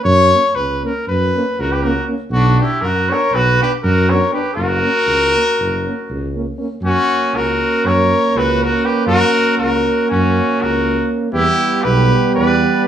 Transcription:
0.04 tuba F#2, cornet C#5
0.33 euphonium A#3, french horn C#4
0.55 tuba C#2, cornet B4
0.83 euphonium A#3, french horn C#4, cornet A#4
1.07 tuba F#2, cornet B4
1.35 euphonium A#3, french horn C#4
1.59 tuba C#2, trumpet F#4, cornet A#4
1.71 trumpet G4, cornet B4
1.83 euphonium A#3, french horn C#4, trumpet F#4, cornet A#4
2.07 euphonium A#3, french horn C#4
2.30 tuba B1, cornet F#4
2.34 trumpet D4
2.58 euphonium B3, french horn D4, cornet G4
2.62 trumpet E4
2.81 tuba F#2, trumpet F#4, cornet A#4
3.09 euphonium B3, french horn D4, trumpet A#4, cornet C#5
3.32 tuba B1, trumpet F#4, cornet B4
3.60 euphonium B3, french horn D4, trumpet G4, cornet B4
3.83 tuba F#2, trumpet F#4, cornet A#4
4.09 euphonium B3, french horn D4, trumpet A#4, cornet C#5
4.31 euphonium B3, french horn D4, trumpet G4, cornet B4
4.54 tuba F#1, trumpet F#4, cornet A#4
4.82 euphonium A#3, french horn C#4
5.06 tuba C#2
5.34 euphonium A#3, french horn C#4
5.59 tuba F#1
5.85 euphonium A#3, french horn C#4
6.10 tuba C#2
6.35 euphonium A#3, french horn C#4
6.58 euphonium A#3, french horn C#4
6.81 tuba F#2, euphonium A#3, french horn C#4, trumpet C#4, cornet F#4
7.33 tuba C#2, trumpet F#4, cornet A#4
7.84 tuba F#2, trumpet A#4, cornet C#5
8.35 tuba C#2, trumpet F#4, cornet B4
8.63 trumpet F#4, cornet A#4
8.84 trumpet G4, cornet B4
9.06 tuba F#2, trumpet F#4, cornet A#4
9.58 tuba C#2, trumpet F#4, cornet A#4
10.09 tuba F#2, trumpet C#4, cornet F#4
10.61 tuba C#2, trumpet F#4, cornet A#4
11.32 tuba E2, euphonium G3, french horn B3, trumpet E4, cornet G4
11.82 tuba B1, trumpet G4, cornet B4
12.34 tuba E2, trumpet B4, cornet D5

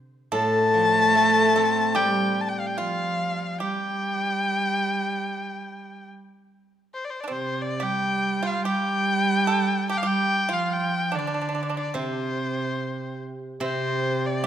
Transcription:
0.32 guzheng A2, cello A3, pipa A4, erhu A5
0.74 guzheng F3
1.15 guzheng A3
1.56 guzheng C4, pipa A4
1.95 guzheng G3, cello G3, pipa G4, erhu G5
2.41 erhu A5
2.49 erhu G5
2.60 erhu F5
2.67 erhu G5
2.77 cello F3, pipa F4, erhu F5
3.60 cello G3, pipa G4, erhu G5
6.94 erhu C5
7.05 erhu D5
7.10 erhu C5
7.21 pipa D4, erhu D5
7.28 cello C3, pipa C4
7.32 erhu C5
7.62 erhu D5
7.80 cello G3, pipa G4, erhu G5
8.43 pipa F4
8.47 erhu F5
8.63 cello G3, pipa G4, erhu G5
9.47 pipa A4
9.89 pipa G4, erhu G5
9.98 erhu F5
10.03 cello G3, pipa G4, erhu G5
10.49 cello F3, pipa F4
10.53 erhu F5
10.73 erhu G5
11.12 cello D3, pipa D4, erhu D5
11.19 pipa D4
11.27 pipa D4
11.34 pipa D4
11.41 pipa D4
11.49 pipa D4
11.55 pipa D4
11.63 pipa D4
11.70 pipa D4
11.77 pipa D4, erhu D5
11.88 erhu D5
11.94 guzheng C3, cello C3, pipa C4, erhu C5
13.60 guzheng C3, cello C3, pipa C4, erhu C5
14.26 erhu D5
14.43 cello G3, pipa G4

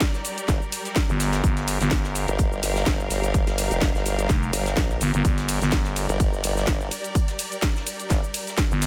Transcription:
Already playing: string section G3 G4 A#4 D5
0.00 kick, snare, closed hi-hat, shaker
0.14 snare, shaker
0.25 closed hi-hat, open hi-hat, shaker
0.38 closed hi-hat, shaker
0.48 wobble bass G1, kick, snare, closed hi-hat, shaker
0.62 shaker
0.72 closed hi-hat, open hi-hat, shaker
0.85 snare, closed hi-hat, shaker
0.96 kick, snare, closed hi-hat, shaker
1.09 fm bass G1, shaker
1.20 snare, closed hi-hat, open hi-hat, shaker
1.32 snare, closed hi-hat, shaker
1.44 fm bass G1, string section F5, kick, closed hi-hat, shaker
1.57 snare, closed hi-hat, shaker
1.68 closed hi-hat, open hi-hat, shaker
1.81 fm bass G1, snare, closed hi-hat, shaker
1.91 kick, snare, closed hi-hat, shaker
2.04 snare, shaker
2.15 closed hi-hat, open hi-hat, shaker
2.28 wobble bass G1, closed hi-hat, shaker
2.38 kick, closed hi-hat, shaker
2.52 shaker
2.63 wobble bass G1, closed hi-hat, open hi-hat, shaker
2.76 snare, shaker
2.86 wobble bass G1, kick, snare, closed hi-hat, shaker
3.00 shaker
3.10 wobble bass G1, closed hi-hat, open hi-hat, shaker
3.24 closed hi-hat, shaker
3.34 kick, closed hi-hat, shaker
3.47 wobble bass G1, snare, closed hi-hat, shaker
3.58 closed hi-hat, open hi-hat, shaker
3.71 wobble bass F1, closed hi-hat, shaker
3.81 kick, snare, closed hi-hat, shaker
3.95 wobble bass G1, snare, shaker
4.05 closed hi-hat, open hi-hat, shaker
4.19 closed hi-hat, shaker
4.29 fm bass F1, kick, snare, closed hi-hat, shaker
4.43 shaker
4.53 wobble bass G1, closed hi-hat, open hi-hat, shaker
4.66 snare, closed hi-hat, shaker
4.77 wobble bass A#1, kick, snare, closed hi-hat, shaker
4.90 shaker
5.01 fm bass G1, closed hi-hat, open hi-hat, shaker
5.14 fm bass G1, closed hi-hat, shaker
5.25 fm bass G1, string section D5, kick, closed hi-hat, ride, shaker
5.38 snare, closed hi-hat, shaker
5.48 closed hi-hat, open hi-hat, ride, shaker
5.61 fm bass G1, snare, closed hi-hat, shaker
5.72 kick, snare, closed hi-hat, ride, shaker
5.84 snare, shaker
5.96 closed hi-hat, open hi-hat, ride, shaker
6.09 wobble bass G1, closed hi-hat, shaker
6.20 kick, closed hi-hat, ride, shaker
6.33 shaker
6.44 wobble bass G1, closed hi-hat, open hi-hat, ride, shaker
6.57 snare, shaker
6.67 wobble bass G1, kick, snare, closed hi-hat, ride, shaker
6.81 shaker
6.91 closed hi-hat, open hi-hat, ride, shaker
7.04 closed hi-hat, shaker
7.15 kick, closed hi-hat, ride, shaker
7.28 snare, closed hi-hat, shaker
7.39 closed hi-hat, open hi-hat, ride, shaker
7.52 closed hi-hat, shaker
7.62 kick, snare, closed hi-hat, ride, shaker
7.76 snare, shaker
7.86 closed hi-hat, open hi-hat, ride, shaker
8.00 closed hi-hat, shaker
8.10 wobble bass G1, kick, snare, closed hi-hat, ride, shaker
8.24 shaker
8.34 closed hi-hat, open hi-hat, ride, shaker
8.47 snare, closed hi-hat, shaker
8.58 kick, snare, closed hi-hat, ride, shaker
8.71 fm bass G1, shaker
8.82 snare, closed hi-hat, open hi-hat, ride, shaker

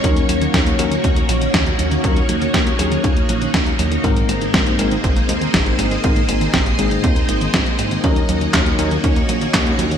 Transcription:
Already playing: string machine A#3 C#4 C#5
0.04 analog synth bass D#2, tine electric piano F#3 C#4 D#4 A#4, synth arpeggio sound C#4, string machine D#4 F#4, kick, closed hi-hat
0.17 synth arpeggio sound A#3, closed hi-hat
0.29 analog synth bass D#2, synth arpeggio sound F#3, closed hi-hat
0.42 synth arpeggio sound D#3, closed hi-hat
0.54 analog synth bass D#2, synth arpeggio sound C#4, kick, snare, closed hi-hat
0.67 synth arpeggio sound A#3, closed hi-hat
0.79 analog synth bass D#2, tine electric piano F#3 C#4 D#4 A#4, synth arpeggio sound F#3, closed hi-hat
0.92 synth arpeggio sound D#3, closed hi-hat
1.04 analog synth bass D#2, synth arpeggio sound C#4, kick, closed hi-hat
1.16 synth arpeggio sound A#3, closed hi-hat
1.29 analog synth bass A#1, synth arpeggio sound F#3, closed hi-hat
1.42 synth arpeggio sound D#3, closed hi-hat
1.54 analog synth bass D#2, synth arpeggio sound C#4, kick, snare, closed hi-hat
1.67 synth arpeggio sound A#3, closed hi-hat
1.79 analog synth bass D#2, synth arpeggio sound F#3, closed hi-hat
1.91 synth arpeggio sound D#3, closed hi-hat
2.04 analog synth bass D#2, tine electric piano F#3 C#4 D#4 A#4, synth arpeggio sound C#4, kick, closed hi-hat
2.16 synth arpeggio sound A#3, closed hi-hat
2.29 analog synth bass D#2, synth arpeggio sound F#3, closed hi-hat
2.41 synth arpeggio sound D#3, closed hi-hat
2.54 analog synth bass D#2, synth arpeggio sound C#4, kick, snare, closed hi-hat
2.66 synth arpeggio sound A#3, closed hi-hat
2.79 analog synth bass D#2, synth arpeggio sound F#3, tine electric piano F#3 C#4 D#4 G#4, closed hi-hat
2.92 synth arpeggio sound D#3, closed hi-hat
3.04 analog synth bass D#2, synth arpeggio sound C#4, kick, closed hi-hat
3.17 synth arpeggio sound A#3, closed hi-hat
3.29 analog synth bass A#1, synth arpeggio sound F#3, closed hi-hat
3.42 synth arpeggio sound D#3, closed hi-hat
3.54 analog synth bass D#2, synth arpeggio sound C#4, kick, snare, closed hi-hat
3.67 synth arpeggio sound A#3, closed hi-hat
3.79 analog synth bass D#2, synth arpeggio sound F#3, closed hi-hat
3.92 synth arpeggio sound D#3, closed hi-hat
4.04 analog synth bass G#1, tine electric piano G#2 G#3 C4 D#4 A#4, synth arpeggio sound C4, string machine C4 G#4 C5, kick, closed hi-hat
4.17 synth arpeggio sound A#3, closed hi-hat
4.29 analog synth bass G#1, synth arpeggio sound G#3, closed hi-hat
4.42 synth arpeggio sound D#3, closed hi-hat
4.54 analog synth bass G#1, synth arpeggio sound C4, kick, snare, closed hi-hat
4.67 synth arpeggio sound A#3, closed hi-hat
4.79 analog synth bass G#1, tine electric piano G#2 G#3 C4 D#4 A#4, synth arpeggio sound G#3, closed hi-hat
4.91 synth arpeggio sound D#3, closed hi-hat
5.04 analog synth bass G#1, synth arpeggio sound C4, kick, closed hi-hat
5.16 synth arpeggio sound A#3, closed hi-hat
5.29 analog synth bass D#2, synth arpeggio sound G#3, closed hi-hat
5.41 synth arpeggio sound D#3, closed hi-hat
5.54 analog synth bass G#1, synth arpeggio sound C4, kick, snare, closed hi-hat
5.66 synth arpeggio sound A#3, closed hi-hat
5.79 analog synth bass G#1, synth arpeggio sound G#3, closed hi-hat
5.91 synth arpeggio sound D#3, closed hi-hat
6.04 analog synth bass G#1, tine electric piano G#2 G#3 C4 D#4 A#4, synth arpeggio sound C4, kick, closed hi-hat
6.16 synth arpeggio sound A#3, closed hi-hat
6.29 analog synth bass G#1, synth arpeggio sound G#3, closed hi-hat
6.41 synth arpeggio sound D#3, closed hi-hat
6.54 analog synth bass G#1, synth arpeggio sound C4, kick, snare, closed hi-hat
6.66 synth arpeggio sound A#3, closed hi-hat
6.79 analog synth bass G#1, tine electric piano G#2 G#3 C4 D#4 G#4, synth arpeggio sound G#3, closed hi-hat
6.91 synth arpeggio sound D#3, closed hi-hat
7.04 analog synth bass D#2, synth arpeggio sound C4, kick, closed hi-hat
7.16 synth arpeggio sound A#3, closed hi-hat
7.29 analog synth bass G#1, synth arpeggio sound G#3, closed hi-hat
7.41 synth arpeggio sound D#3, closed hi-hat
7.54 analog synth bass G#1, synth arpeggio sound C4, kick, snare, closed hi-hat
7.66 synth arpeggio sound A#3, closed hi-hat
7.79 analog synth bass G#1, synth arpeggio sound G#3, closed hi-hat
7.91 synth arpeggio sound D#3, closed hi-hat
8.04 analog synth bass D#2, tine electric piano F#3 C#4 D#4 A#4, string machine A#3 C#4 F#4 C#5, synth arpeggio sound C#4, kick, closed hi-hat
8.16 synth arpeggio sound A#3, closed hi-hat
8.29 analog synth bass D#2, synth arpeggio sound F#3, closed hi-hat
8.41 synth arpeggio sound D#3, closed hi-hat
8.54 analog synth bass D#2, synth arpeggio sound C#4, kick, snare, clap, closed hi-hat
8.66 synth arpeggio sound A#3, closed hi-hat
8.79 analog synth bass D#2, tine electric piano F#3 C#4 D#4 A#4, synth arpeggio sound F#3, closed hi-hat
8.91 synth arpeggio sound D#3, closed hi-hat
9.04 analog synth bass D#2, synth arpeggio sound C#4, kick, closed hi-hat
9.16 synth arpeggio sound A#3, closed hi-hat
9.29 analog synth bass A#1, synth arpeggio sound F#3, closed hi-hat
9.41 synth arpeggio sound D#3, closed hi-hat
9.54 analog synth bass D#2, synth arpeggio sound C#4, kick, snare, clap, closed hi-hat
9.66 synth arpeggio sound A#3, closed hi-hat
9.79 analog synth bass D#2, synth arpeggio sound F#3, closed hi-hat
9.91 synth arpeggio sound D#3, closed hi-hat

